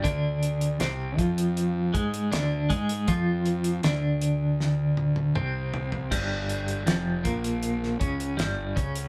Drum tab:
CC |----------------|----------------|x---------------|
HH |x-xxx-xxx-xxx-xx|x-xxx-x---------|x-xxx-xxx-xxx-xx|
SD |----o-------o---|----o---o-------|----o----o--o---|
T1 |----------------|----------oo----|----------------|
T2 |----------------|------------o---|----------------|
FT |----------------|--------------oo|----------------|
BD |o-----o---o---o-|o---------------|o-----o---o---o-|